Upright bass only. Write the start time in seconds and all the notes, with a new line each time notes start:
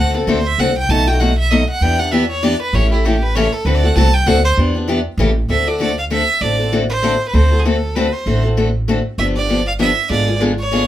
Already playing: D2
0.27 D2
0.58 C2
0.89 B1
1.81 E2
2.73 A1
3.65 D2
3.96 C2
4.26 D2
4.57 E2
5.17 A1
5.49 D2
6.41 A1
7.34 D2
8.26 A1
9.18 G1
10.10 G#1